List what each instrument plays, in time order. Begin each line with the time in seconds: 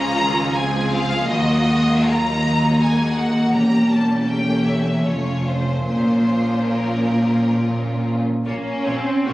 Already playing: cello section C#2, double bass section C#2, viola section F3 C#4, violin section F4 G#4 A#5
0.19 viola section D#3
0.54 viola section F3 C4, violin section F4 G#4 G#5
0.91 violin section F5
1.27 cello section D#2, double bass section D#2, viola section F#3 A#3, violin section F#4 D#5
1.68 viola section G#3
2.07 viola section F#3, violin section D#4 A#5
2.46 viola section F#3
2.82 viola section G#3, violin section F#4 G#5
3.16 violin section F#5
3.53 double bass section E1, cello section E2, viola section G3, violin section C#4 G4 A#5
3.90 violin section A5
4.21 violin section A5
4.28 viola section A3, violin section G4 G5
4.67 violin section E5
5.05 double bass section F1, cello section F2, viola section A3, violin section F4 C#5
5.46 violin section C5
5.88 double bass section A#1, cello section A#2, viola section F3 A#3, violin section C#4 F4 C5
6.77 violin section A#4
8.46 double bass section A#1, viola section A#3 F4, cello section A#3, violin section C#4 C#5
8.86 double bass section A#1, viola section A#3 F4, cello section C4, violin section C#5
9.27 double bass section A#1, viola section A#3 F4, cello section A#3, violin section F#4 C#5